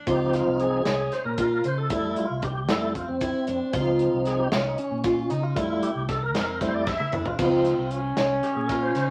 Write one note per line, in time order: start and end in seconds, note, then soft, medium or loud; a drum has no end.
0.07 0.40 C#2 loud
0.07 0.81 F3 medium
0.07 0.82 C4 soft
0.07 0.82 D#4 medium
0.07 0.54 F4 medium
0.07 0.34 G4 medium
0.07 kick loud
0.07 closed hi-hat medium
0.33 0.58 F4 medium
0.33 snare soft
0.33 closed hi-hat medium
0.47 0.80 C2 medium
0.60 1.14 G#4 loud
0.60 closed hi-hat medium
0.85 1.08 C2 medium
0.85 1.32 C#4 medium
0.85 snare medium
0.85 closed hi-hat medium
1.12 1.24 C5 medium
1.12 snare soft
1.12 closed hi-hat medium
1.25 1.58 A#2 loud
1.25 1.66 A#4 medium
1.38 1.61 F4 medium
1.38 kick medium
1.38 closed hi-hat medium
1.64 1.87 C#3 medium
1.64 1.87 D#4 medium
1.64 1.78 C5 medium
1.64 closed hi-hat medium
1.78 2.14 A4 loud
1.90 2.26 G3 medium
1.90 2.26 A3 soft
1.90 2.37 E4 medium
1.90 2.26 E4 medium
1.90 kick loud
1.90 closed hi-hat medium
2.16 2.44 F4 medium
2.16 closed hi-hat medium
2.30 2.69 C2 medium
2.42 2.71 G4 medium
2.42 kick medium
2.42 closed hi-hat medium
2.69 3.02 F2 medium
2.69 2.93 G3 soft
2.69 2.93 A3 soft
2.69 3.15 C4 medium
2.69 2.94 E4 medium
2.69 2.94 A4 medium
2.69 snare loud
2.69 closed hi-hat medium
2.95 3.09 F4 medium
2.95 kick medium
2.95 closed hi-hat medium
3.08 3.31 F2 medium
3.08 3.73 C4 medium
3.21 3.44 E4 medium
3.21 kick medium
3.21 closed hi-hat medium
3.47 3.59 F2 loud
3.47 3.71 D4 medium
3.47 closed hi-hat medium
3.73 4.07 C#2 loud
3.73 4.48 F3 medium
3.73 4.49 C4 soft
3.73 4.49 D#4 medium
3.73 4.20 F4 medium
3.73 kick loud
3.73 closed hi-hat medium
3.99 closed hi-hat medium
4.13 4.46 C2 medium
4.25 4.38 G#4 medium
4.25 snare soft
4.25 closed hi-hat medium
4.39 4.53 G4 medium
4.52 4.74 C2 medium
4.52 4.98 C#4 medium
4.52 4.64 F4 medium
4.52 snare loud
4.52 closed hi-hat medium
4.65 4.79 D#4 medium
4.78 5.32 C#4 medium
4.78 closed hi-hat medium
4.91 5.24 A#2 medium
5.04 5.27 F4 medium
5.04 kick loud
5.04 snare soft
5.04 closed hi-hat medium
5.30 5.52 C#3 medium
5.30 5.42 D#4 medium
5.30 5.54 D#4 medium
5.30 closed hi-hat medium
5.43 5.84 F4 loud
5.55 5.90 G3 medium
5.55 5.91 A3 medium
5.55 5.91 E4 medium
5.55 6.03 E4 medium
5.55 kick loud
5.55 closed hi-hat medium
5.83 6.09 G4 medium
5.83 closed hi-hat medium
5.95 6.35 C2 medium
6.09 6.22 A4 medium
6.09 kick medium
6.09 snare soft
6.09 closed hi-hat medium
6.23 6.59 A#4 loud
6.34 6.68 F2 medium
6.34 6.81 C4 medium
6.34 snare medium
6.34 closed hi-hat medium
6.61 6.84 G3 soft
6.61 6.85 A3 soft
6.61 6.85 E4 soft
6.61 6.73 C5 medium
6.61 kick medium
6.61 snare soft
6.61 closed hi-hat medium
6.74 6.96 F2 medium
6.74 6.88 D5 medium
6.87 7.10 E4 medium
6.87 7.14 E5 medium
6.87 kick loud
6.87 snare medium
7.00 high tom medium
7.12 7.24 E2 loud
7.12 7.36 D4 medium
7.12 7.25 E4 medium
7.12 mid tom medium
7.26 8.00 F4 loud
7.26 floor tom medium
7.38 7.72 C#2 medium
7.38 7.73 F3 medium
7.38 7.74 C4 soft
7.38 7.93 C4 medium
7.38 7.74 D#4 medium
7.38 7.85 F4 medium
7.38 kick loud
7.38 closed hi-hat medium
7.38 crash medium
7.65 snare soft
7.65 closed hi-hat medium
7.78 8.11 C2 medium
7.91 9.10 C#4 loud
7.91 closed hi-hat medium
8.17 8.39 C2 medium
8.17 8.63 C#4 medium
8.17 snare medium
8.17 closed hi-hat medium
8.43 8.55 G4 medium
8.43 snare soft
8.43 closed hi-hat medium
8.56 8.89 A#2 medium
8.56 8.67 G#4 medium
8.66 8.92 F4 medium
8.66 8.70 A4 medium
8.66 8.76 A#4 medium
8.66 kick loud
8.66 snare soft
8.66 closed hi-hat medium
8.83 9.09 C5 medium
8.95 9.10 C#3 medium
8.95 9.10 D#4 medium
8.95 snare soft
8.95 closed hi-hat medium